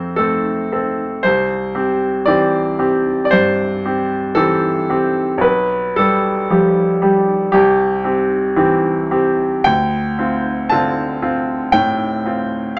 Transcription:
0.00 1.28 F2 soft
0.00 0.15 C4 soft
0.00 0.15 A4 soft
0.00 0.18 C5 medium
0.16 0.68 A3 soft
0.16 0.69 C4 soft
0.16 0.71 A4 medium
0.72 1.21 C4 soft
0.72 1.21 A4 soft
1.23 1.75 C2 soft
1.23 2.27 C5 medium
1.75 2.23 C4 soft
1.75 2.24 G4 soft
2.26 2.76 E3 soft
2.26 2.76 C4 soft
2.26 2.76 G4 soft
2.26 3.24 D5 medium
2.79 3.28 C4 soft
2.79 3.28 G4 soft
3.25 3.32 D5 medium
3.31 3.83 G2 soft
3.31 4.36 C5 medium
3.85 4.33 C4 soft
3.85 4.33 G4 soft
4.35 4.85 E3 soft
4.35 4.86 C4 soft
4.35 4.86 G4 soft
4.35 5.43 A4 medium
4.90 5.40 C4 soft
4.90 5.40 G4 soft
5.38 5.93 B1 soft
5.38 5.96 B4 medium
5.96 6.47 G3 soft
5.96 6.47 G4 soft
5.96 7.54 A4 medium
6.50 6.99 F3 soft
6.50 6.99 G3 soft
6.50 6.99 G4 soft
7.02 7.50 G3 soft
7.02 7.50 G4 soft
7.52 8.04 C2 medium
7.52 8.04 G4 medium
8.04 8.54 C4 soft
8.04 8.54 G4 soft
8.56 9.08 E3 soft
8.56 9.08 C4 soft
8.56 9.08 G4 soft
9.11 9.63 C4 soft
9.11 9.63 G4 soft
9.64 10.18 D2 soft
9.64 10.71 G5 medium
10.19 10.67 C4 soft
10.19 10.68 F4 soft
10.69 11.18 D3 soft
10.69 11.18 C4 soft
10.69 11.19 F4 soft
10.69 11.72 A5 medium
11.22 11.70 C4 soft
11.22 11.70 F4 soft
11.72 12.24 A2 soft
11.72 12.78 G5 medium
12.26 12.75 C4 soft
12.26 12.75 F4 soft

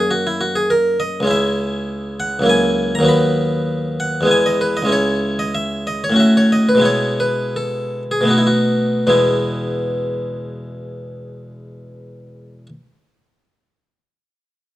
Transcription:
0.00 1.20 F#2 medium
0.00 1.21 A#3 soft
0.00 1.22 C#4 soft
0.00 0.11 G#4 medium
0.11 0.25 F#4 medium
0.27 0.41 E4 medium
0.41 0.55 F#4 medium
0.56 0.70 G#4 medium
0.70 1.00 A#4 medium
1.00 1.29 D#5 medium
1.20 2.38 C#2 medium
1.20 2.41 G#3 soft
1.25 2.42 C#4 soft
1.25 2.43 E4 soft
1.31 2.19 E5 medium
2.20 2.44 F#5 medium
2.39 3.01 C#2 medium
2.39 2.99 F#3 soft
2.39 3.03 A#3 soft
2.46 3.04 E4 soft
2.46 2.93 G#5 medium
2.95 4.21 D#2 medium
2.95 3.09 A#5 medium
3.00 4.22 F#3 soft
3.00 4.23 B3 soft
3.05 4.24 F#4 soft
3.05 3.99 B5 medium
4.00 4.30 F#5 medium
4.21 4.84 E2 soft
4.21 4.84 G#3 soft
4.25 4.86 B3 soft
4.25 4.87 E4 soft
4.31 4.45 G#5 medium
4.46 4.60 D#5 medium
4.61 4.76 B4 medium
4.77 4.91 D#5 medium
4.82 6.10 C#2 soft
4.82 6.11 G#3 soft
4.86 6.12 C#4 soft
4.86 6.13 E4 soft
4.92 5.38 C#5 medium
5.39 5.54 D#5 medium
5.55 5.86 E5 medium
5.87 6.03 D#5 medium
6.04 6.19 C#5 medium
6.10 6.78 A2 soft
6.10 6.79 A3 soft
6.14 6.80 C#4 soft
6.14 6.81 F#4 soft
6.20 6.35 E5 medium
6.37 6.52 C#5 medium
6.52 6.68 D#5 medium
6.69 6.85 B4 medium
6.75 8.20 B2 soft
6.75 8.21 G#3 soft
6.80 8.22 B3 soft
6.80 8.23 E4 soft
6.85 7.19 C#5 medium
7.20 7.55 B4 medium
7.56 8.02 A4 medium
8.11 8.29 G#4 soft
8.21 9.02 B2 soft
8.21 9.03 A3 soft
8.25 9.04 B3 soft
8.25 9.05 D#4 soft
8.30 8.38 F#4 soft
8.38 8.46 E4 soft
8.47 9.09 F#4 soft
9.07 12.66 E2 soft
9.07 12.66 B2 soft
9.07 12.67 G#3 soft
9.07 12.67 B3 soft
9.07 12.69 E4 soft

